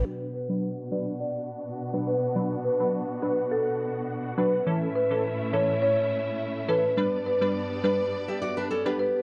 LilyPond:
<<
  \new Staff \with { instrumentName = "Marimba" } { \time 4/4 \key b \minor \tempo 4 = 104 r8 b'16 r8. d''16 r16 d''8. r8. b'16 r16 | r8 b'16 r8. b'16 r16 a'8. r8. b'16 r16 | r8 b'16 r8. cis''16 r16 cis''8. r8. b'16 r16 | r8 b'16 r8. b'16 r4. r16 b'16 r16 | }
  \new Staff \with { instrumentName = "Nylon-string guitar" } { \time 4/4 \key b \minor r1 | r1 | r1 | r2 r16 <g' e''>16 <fis' d''>16 <d' b'>16 <cis' a'>16 <b g'>8. | }
  \new Staff \with { instrumentName = "Synth stab" } { \time 4/4 \key b \minor <fis d' b'>16 r8 <fis d' b'>16 r8 <fis d' b'>16 r4. <fis d' b'>16 r8 | <fis d' b'>16 r8 <fis d' b'>16 r8 <fis d' b'>16 r4. r16 <fis d' b'>16 r16 | <e cis' a'>16 r8 <e cis' a'>16 r8 <e cis' a'>16 r4. r16 <e cis' a'>16 r16 | <g d' b'>16 r8 <g d' b'>16 r8 <g d' b'>16 r4. <g d' b'>16 r8 | }
  \new Staff \with { instrumentName = "String section" } { \time 4/4 \key b \minor <b, b d' fis' fis''>1~ | <b, b d' fis' fis''>1 | <a, a cis' e' e''>1 | <g, g b d' d''>1 | }
>>